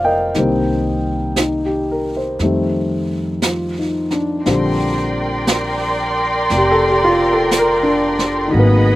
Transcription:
Already playing: F1 D3 F3 G3 A#3 C4 F4 C5 D5 E5 F5
0.05 A#4 D#5 G5
0.34 C2 D#3 G3 A#3, brush sweep, snare
0.39 C4
1.36 D#4, brush sweep, snare, hi-hat pedal
1.66 G4
1.91 A#4
2.17 C5
2.39 F2 D#3 G3 A3 C4, brush sweep, snare
3.42 F4, brush sweep, snare, hi-hat pedal
3.79 D#4
4.11 D4, snare
4.45 A#1 D3 F3 G3 C4 A#4 D5 G5 C6, brush sweep, snare
5.47 brush sweep, snare, hi-hat pedal
6.50 F1, brush sweep, snare
6.57 G4
6.71 A4
6.90 G4
7.04 F4
7.33 A4
7.51 brush sweep, snare, hi-hat pedal
7.59 A#4
7.83 D4
8.19 snare
8.48 D#3 G#4
8.52 G#1 F#3 A#3 D#5 F#5 B5, brush sweep
8.59 B3

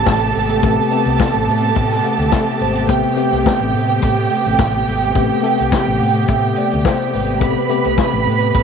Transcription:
Already playing: C3 A3 B3 G4 A4 A5
0.06 A1, kick, snare, closed hi-hat
0.22 closed hi-hat
0.35 G#1, open hi-hat
0.49 closed hi-hat
0.63 A1 C3 A3 B3 G4, kick, closed hi-hat
0.91 C3 A3 B3 G4, closed hi-hat
1.05 C2, closed hi-hat
1.19 kick, snare, closed hi-hat
1.35 A1
1.48 A2, open hi-hat
1.62 closed hi-hat
1.75 A2, kick, closed hi-hat
1.91 snare, closed hi-hat
2.03 F#5, closed hi-hat
2.18 D2, closed hi-hat
2.31 E5, kick, snare, closed hi-hat
2.60 G#1 C5, open hi-hat
2.75 closed hi-hat
2.88 A1 C3 A3 B3 G4 G5, kick, closed hi-hat
3.16 C3 A3 B3 G4, closed hi-hat
3.32 C2, closed hi-hat
3.46 kick, snare, closed hi-hat
3.61 A1
3.74 A2, open hi-hat
3.89 closed hi-hat
4.02 A2, kick, closed hi-hat
4.17 closed hi-hat
4.30 closed hi-hat
4.45 A1, closed hi-hat
4.58 A1, kick, snare, closed hi-hat
4.87 G#1, open hi-hat
5.02 closed hi-hat
5.15 A1 C3 A3 B3 G4, kick, closed hi-hat
5.43 C3 A3 B3 A4, closed hi-hat
5.59 C2, closed hi-hat
5.72 kick, snare, closed hi-hat
5.87 A1
5.99 A2 F#5, open hi-hat
6.14 closed hi-hat
6.28 A2 E5, kick, closed hi-hat
6.56 D5, closed hi-hat
6.71 D2, closed hi-hat
6.85 C5, kick, snare, closed hi-hat
7.00 closed hi-hat
7.13 G#1 B4, open hi-hat
7.27 closed hi-hat
7.40 A1 C3 A3 B3 G4 B4 B5, kick, closed hi-hat
7.56 closed hi-hat
7.69 C3 A3 B3 G4, closed hi-hat
7.84 C2, closed hi-hat
7.97 kick, snare, closed hi-hat
8.13 A1
8.27 A2, open hi-hat
8.41 closed hi-hat
8.54 A2, kick, closed hi-hat

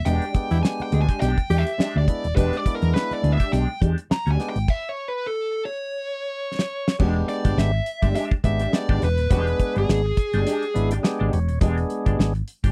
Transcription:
0.05 E1 G#3 B3 D4 G4 G5, closed hi-hat
0.22 closed hi-hat
0.34 G#3 B3 D4 G4, muted fingered electric bass stroke, kick, closed hi-hat
0.51 E2 E4, muted clean electric guitar stroke, closed hi-hat
0.63 G#5, muted clean electric guitar stroke, snare
0.79 G5, muted clean electric guitar stroke, muted fingered electric bass stroke, closed hi-hat
0.92 D2 G#3 D4 G#4, closed hi-hat
1.01 G#5
1.09 G#3 D4 G4, kick, closed hi-hat
1.20 B1 G#3 D4 G4 G5, snare, closed hi-hat
1.38 muted clean electric guitar stroke, kick, closed hi-hat
1.50 E2 G#3 D4 G4, closed hi-hat
1.59 E5
1.66 muted clean electric guitar stroke, closed hi-hat
1.78 G#3 D4 G4, muted fingered electric bass stroke, snare
1.96 D2 D5
2.08 G#3 B3 D4 E4, muted clean electric guitar stroke, kick, closed hi-hat
2.23 D#1, muted clean electric guitar stroke, closed hi-hat
2.35 E1 G#3 B3 D4 G4 B4, kick, closed hi-hat
2.53 D5, closed hi-hat
2.66 G#3 B3 D4 E4, muted fingered electric bass stroke, kick, closed hi-hat
2.75 A#4
2.81 E2, muted clean electric guitar stroke, closed hi-hat
2.94 B4, muted clean electric guitar stroke, snare
3.11 D5, muted fingered electric bass stroke, muted clean electric guitar stroke, closed hi-hat
3.22 D2 G#3 D4 G#4, closed hi-hat
3.32 E5
3.40 G#3 D4 G4, kick, closed hi-hat
3.52 B1 G#3 D4 G4 G5, snare, closed hi-hat
3.68 muted clean electric guitar stroke
3.81 E2 G#3 D4 G4, kick, closed hi-hat
3.98 muted clean electric guitar stroke, closed hi-hat
4.10 A#5, muted clean electric guitar stroke, muted fingered electric bass stroke, snare
4.26 D2 G#3 D4 G4, closed hi-hat
4.31 G#5
4.39 G#3 B3 D4 G4, muted clean electric guitar stroke, snare, closed hi-hat
4.49 G5
4.55 G#1, muted clean electric guitar stroke, closed hi-hat
4.68 E5, kick, crash
4.89 C#5
5.08 B4
5.27 A4
5.65 C#5
6.59 snare
6.88 snare
6.99 E1 G#3 B3 D4 G4, kick, crash
7.15 muted clean electric guitar stroke
7.29 D5, muted clean electric guitar stroke, closed hi-hat
7.45 G1 G#3 D4 G4, kick, closed hi-hat
7.57 G#1 E5, muted clean electric guitar stroke, snare
7.74 muted clean electric guitar stroke
7.86 closed hi-hat
8.02 G1 G#3 D4 G4, kick, closed hi-hat
8.15 G#3 D4 G4 E5, snare, closed hi-hat
8.31 kick
8.44 G#1 G#3 B3 D4 G4 E5, muted clean electric guitar stroke, kick, closed hi-hat
8.60 G#3 D4 G4, closed hi-hat
8.73 G#3 B3 D4 G4 D5, muted clean electric guitar stroke, snare
8.89 G#1 G#3 D4 G4, kick
9.02 E1 B4, muted clean electric guitar stroke, snare, closed hi-hat
9.18 D#1, muted clean electric guitar stroke, closed hi-hat
9.30 E1 G#3 B3 D4 G4 B4, kick, closed hi-hat
9.38 G#4
9.47 muted clean electric guitar stroke, closed hi-hat
9.59 muted clean electric guitar stroke, kick, closed hi-hat
9.76 G1 G#3 D4 G4 G#4, closed hi-hat
9.89 G#1, muted clean electric guitar stroke, snare
10.05 muted clean electric guitar stroke
10.17 kick, closed hi-hat
10.33 G1 G#3 D4 G4, closed hi-hat
10.46 G#3 D4 G4, snare, closed hi-hat
10.62 closed hi-hat
10.74 G#1 G#3 B3 D4 E4, muted clean electric guitar stroke, closed hi-hat
10.91 G#3 D4 G4, closed hi-hat
11.03 G#3 B3 D4 G4 G#4, snare
11.19 G#1 G#3 D4 G4
11.32 E1 C#5, muted clean electric guitar stroke, closed hi-hat
11.48 D#1, muted clean electric guitar stroke, closed hi-hat
11.61 E1 G#3 B3 D4 G4 G#4, kick, closed hi-hat
11.77 muted clean electric guitar stroke, closed hi-hat
11.90 muted clean electric guitar stroke, closed hi-hat
12.06 G1 G#3 D4 G4, kick, closed hi-hat
12.18 G#1, muted clean electric guitar stroke, snare
12.35 muted clean electric guitar stroke, closed hi-hat
12.48 closed hi-hat
12.64 G1 G#3 D4 G4, kick, closed hi-hat

